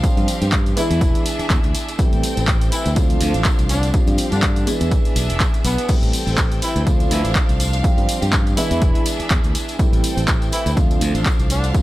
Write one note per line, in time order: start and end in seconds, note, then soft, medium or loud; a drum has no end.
0.00 0.72 F3 medium
0.00 0.72 G3 medium
0.00 0.73 C4 medium
0.00 0.76 C4 medium
0.00 0.76 G4 medium
0.00 0.75 F5 medium
0.00 kick loud
0.00 closed hi-hat medium
0.04 0.73 D4 medium
0.04 0.73 F4 medium
0.04 tambourine soft
0.17 0.26 G2 loud
0.17 closed hi-hat soft
0.17 tambourine soft
0.28 open hi-hat loud
0.28 tambourine medium
0.42 0.74 G2 loud
0.42 closed hi-hat soft
0.42 tambourine soft
0.52 kick loud
0.52 clap loud
0.52 closed hi-hat medium
0.52 tambourine soft
0.66 closed hi-hat soft
0.66 tambourine soft
0.76 1.94 E3 medium
0.76 1.26 E3 medium
0.76 1.94 G#3 medium
0.76 1.94 B3 medium
0.76 1.97 D4 medium
0.76 1.95 D4 medium
0.76 1.26 E4 loud
0.76 1.95 E4 loud
0.76 1.97 G#4 medium
0.76 1.97 E5 medium
0.76 muted fingered electric bass stroke soft
0.76 open hi-hat loud
0.76 tambourine medium
0.91 0.99 E2 medium
0.91 closed hi-hat soft
0.91 tambourine soft
1.01 1.12 E1 medium
1.01 kick loud
1.01 closed hi-hat medium
1.01 tambourine soft
1.15 closed hi-hat soft
1.15 tambourine soft
1.26 open hi-hat loud
1.26 tambourine medium
1.39 muted fingered electric bass stroke soft
1.39 closed hi-hat soft
1.39 tambourine soft
1.50 1.61 E2 loud
1.50 kick loud
1.50 clap loud
1.50 closed hi-hat medium
1.50 tambourine medium
1.63 1.73 D2 medium
1.63 closed hi-hat soft
1.63 tambourine soft
1.75 open hi-hat loud
1.75 tambourine medium
1.88 closed hi-hat soft
1.88 tambourine soft
1.98 2.92 E3 medium
1.98 2.92 G3 medium
1.98 2.92 A3 medium
1.98 2.96 C4 medium
1.98 2.92 C4 medium
1.98 2.92 E4 medium
1.98 2.96 A4 medium
1.98 2.96 G5 medium
1.98 muted fingered electric bass stroke soft
1.98 kick loud
1.98 closed hi-hat medium
1.98 tambourine soft
2.13 2.21 A1 loud
2.13 closed hi-hat soft
2.13 tambourine soft
2.23 open hi-hat loud
2.23 tambourine medium
2.37 2.69 A1 medium
2.37 closed hi-hat soft
2.37 tambourine soft
2.48 kick loud
2.48 clap loud
2.48 closed hi-hat medium
2.48 tambourine medium
2.61 closed hi-hat soft
2.61 tambourine soft
2.72 2.92 E3 medium
2.72 2.92 E4 medium
2.72 open hi-hat loud
2.72 tambourine medium
2.86 3.18 D2 medium
2.86 closed hi-hat soft
2.86 tambourine soft
2.95 3.89 F3 medium
2.95 3.89 A3 medium
2.95 3.89 C4 medium
2.95 3.90 D4 medium
2.95 3.93 D4 medium
2.95 3.90 F4 medium
2.95 3.93 C5 medium
2.95 3.93 F5 medium
2.95 kick loud
2.95 closed hi-hat medium
2.95 tambourine soft
3.10 closed hi-hat soft
3.10 tambourine soft
3.21 3.32 D2 loud
3.21 open hi-hat loud
3.21 tambourine medium
3.34 3.43 A1 loud
3.34 closed hi-hat soft
3.34 tambourine soft
3.45 kick loud
3.45 clap loud
3.45 closed hi-hat medium
3.45 tambourine medium
3.59 3.91 C2 medium
3.59 closed hi-hat soft
3.59 tambourine soft
3.69 3.89 D3 medium
3.69 3.89 D4 loud
3.69 open hi-hat loud
3.69 tambourine medium
3.83 closed hi-hat soft
3.83 tambourine soft
3.93 4.62 F3 medium
3.93 4.63 G3 medium
3.93 4.63 C4 medium
3.93 4.66 C4 medium
3.93 4.63 D4 medium
3.93 4.63 F4 medium
3.93 4.66 G4 medium
3.93 4.66 F5 medium
3.93 kick loud
3.93 closed hi-hat medium
3.93 tambourine soft
4.07 4.16 G2 loud
4.07 closed hi-hat soft
4.07 tambourine soft
4.18 open hi-hat loud
4.18 tambourine medium
4.32 4.64 G2 medium
4.32 4.67 D3 medium
4.32 4.67 D4 loud
4.32 closed hi-hat soft
4.32 tambourine soft
4.43 kick loud
4.43 clap loud
4.43 closed hi-hat medium
4.56 closed hi-hat soft
4.56 tambourine soft
4.66 5.84 E3 loud
4.66 5.84 G#3 medium
4.66 5.84 B3 medium
4.66 5.88 D4 medium
4.66 5.85 D4 medium
4.66 5.85 E4 loud
4.66 5.88 G#4 medium
4.66 5.88 E5 medium
4.66 muted fingered electric bass stroke soft
4.66 open hi-hat loud
4.66 tambourine medium
4.81 4.90 E2 medium
4.81 closed hi-hat soft
4.81 tambourine soft
4.91 kick loud
4.91 closed hi-hat medium
4.91 tambourine soft
5.05 closed hi-hat soft
5.05 tambourine soft
5.16 5.27 B1 medium
5.16 open hi-hat loud
5.16 tambourine medium
5.30 5.38 E1 medium
5.30 closed hi-hat soft
5.30 tambourine soft
5.40 kick loud
5.40 clap loud
5.40 closed hi-hat medium
5.40 tambourine medium
5.54 closed hi-hat soft
5.54 tambourine soft
5.64 5.76 B1 loud
5.64 5.94 B3 loud
5.64 open hi-hat loud
5.64 tambourine medium
5.78 closed hi-hat soft
5.78 tambourine soft
5.88 6.82 E3 medium
5.88 6.82 G3 medium
5.88 6.82 A3 medium
5.88 6.82 C4 medium
5.88 6.86 C4 medium
5.88 6.83 E4 medium
5.88 6.86 A4 medium
5.88 6.86 G5 medium
5.88 muted fingered electric bass stroke soft
5.88 kick loud
5.88 closed hi-hat medium
5.88 crash medium
5.88 tambourine medium
6.02 6.11 A1 loud
6.02 closed hi-hat soft
6.02 tambourine soft
6.13 open hi-hat loud
6.13 tambourine medium
6.27 6.59 A1 medium
6.27 closed hi-hat soft
6.27 tambourine soft
6.38 kick loud
6.38 clap loud
6.38 closed hi-hat medium
6.38 tambourine medium
6.51 closed hi-hat soft
6.51 tambourine soft
6.62 6.82 E3 medium
6.62 6.82 E4 medium
6.62 open hi-hat loud
6.62 tambourine medium
6.76 7.08 D2 medium
6.76 closed hi-hat soft
6.76 tambourine soft
6.86 7.79 F3 medium
6.86 7.80 A3 medium
6.86 7.80 C4 medium
6.86 7.83 D4 medium
6.86 7.80 D4 medium
6.86 7.80 F4 medium
6.86 7.83 C5 medium
6.86 8.56 F5 medium
6.86 kick loud
6.86 closed hi-hat medium
6.86 tambourine medium
7.00 closed hi-hat soft
7.00 tambourine soft
7.11 7.22 D2 loud
7.11 7.31 E3 medium
7.11 7.31 E4 medium
7.11 open hi-hat loud
7.11 tambourine loud
7.25 7.33 A1 loud
7.25 closed hi-hat soft
7.25 tambourine soft
7.35 kick loud
7.35 clap loud
7.35 closed hi-hat medium
7.35 tambourine medium
7.49 7.81 C2 medium
7.49 closed hi-hat soft
7.49 tambourine soft
7.60 open hi-hat loud
7.60 tambourine medium
7.73 closed hi-hat soft
7.73 tambourine soft
7.83 8.52 F3 medium
7.83 8.53 G3 medium
7.83 8.53 C4 medium
7.83 8.57 C4 medium
7.83 8.53 D4 medium
7.83 8.53 F4 medium
7.83 8.57 G4 medium
7.83 kick loud
7.83 closed hi-hat medium
7.83 tambourine medium
7.98 8.07 G2 loud
7.98 closed hi-hat soft
7.98 tambourine soft
8.09 open hi-hat loud
8.09 tambourine loud
8.22 8.54 G2 medium
8.22 closed hi-hat soft
8.22 tambourine soft
8.33 kick loud
8.33 clap loud
8.33 closed hi-hat medium
8.33 tambourine medium
8.47 closed hi-hat soft
8.47 tambourine soft
8.57 9.75 E3 medium
8.57 9.06 E3 medium
8.57 9.75 G#3 medium
8.57 9.75 B3 medium
8.57 9.78 D4 medium
8.57 9.75 D4 medium
8.57 9.06 E4 loud
8.57 9.75 E4 loud
8.57 9.78 G#4 medium
8.57 9.78 E5 medium
8.57 muted fingered electric bass stroke soft
8.57 open hi-hat loud
8.57 tambourine loud
8.71 8.80 E2 medium
8.71 closed hi-hat soft
8.71 tambourine soft
8.82 8.93 E1 medium
8.82 kick loud
8.82 closed hi-hat medium
8.82 tambourine medium
8.95 closed hi-hat soft
8.95 tambourine soft
9.06 open hi-hat loud
9.06 tambourine loud
9.20 muted fingered electric bass stroke soft
9.20 closed hi-hat soft
9.20 tambourine soft
9.30 9.42 E2 loud
9.30 kick loud
9.30 clap loud
9.30 closed hi-hat medium
9.30 tambourine medium
9.44 9.53 D2 medium
9.44 closed hi-hat soft
9.44 tambourine soft
9.55 open hi-hat loud
9.55 tambourine loud
9.68 closed hi-hat soft
9.68 tambourine soft
9.78 10.72 E3 medium
9.78 10.72 G3 medium
9.78 10.72 A3 medium
9.78 10.76 C4 medium
9.78 10.73 C4 medium
9.78 10.73 E4 medium
9.78 10.76 A4 medium
9.78 10.76 G5 medium
9.78 muted fingered electric bass stroke soft
9.78 kick loud
9.78 closed hi-hat medium
9.78 tambourine medium
9.93 10.02 A1 loud
9.93 closed hi-hat soft
9.93 tambourine soft
10.04 open hi-hat loud
10.04 tambourine loud
10.17 10.49 A1 loud
10.17 closed hi-hat soft
10.17 tambourine soft
10.28 kick loud
10.28 clap loud
10.28 closed hi-hat medium
10.28 tambourine medium
10.42 closed hi-hat soft
10.42 tambourine soft
10.52 10.72 E3 medium
10.52 10.72 E4 loud
10.52 muted fingered electric bass stroke soft
10.52 open hi-hat loud
10.52 tambourine loud
10.66 10.98 D2 medium
10.66 closed hi-hat soft
10.66 tambourine soft
10.76 11.70 F3 medium
10.76 11.70 A3 medium
10.76 11.70 C4 medium
10.76 11.74 D4 medium
10.76 11.70 D4 medium
10.76 11.70 F4 medium
10.76 11.73 C5 medium
10.76 11.82 F5 medium
10.76 kick loud
10.76 closed hi-hat medium
10.76 tambourine medium
10.91 closed hi-hat soft
10.91 tambourine soft
11.01 11.12 D2 loud
11.01 open hi-hat loud
11.01 tambourine medium
11.15 11.24 A1 loud
11.15 closed hi-hat soft
11.15 tambourine soft
11.26 kick loud
11.26 clap loud
11.26 closed hi-hat medium
11.26 tambourine medium
11.39 11.71 C2 medium
11.39 closed hi-hat soft
11.39 tambourine soft
11.50 11.70 D3 medium
11.50 11.70 D4 medium
11.50 open hi-hat loud
11.50 tambourine medium
11.64 closed hi-hat soft
11.64 tambourine soft
11.73 11.82 F3 medium
11.73 11.82 G3 medium
11.73 11.82 C4 medium
11.73 11.82 D4 medium
11.73 11.82 F4 medium
11.73 11.82 G4 medium
11.73 kick loud
11.73 closed hi-hat medium
11.73 tambourine medium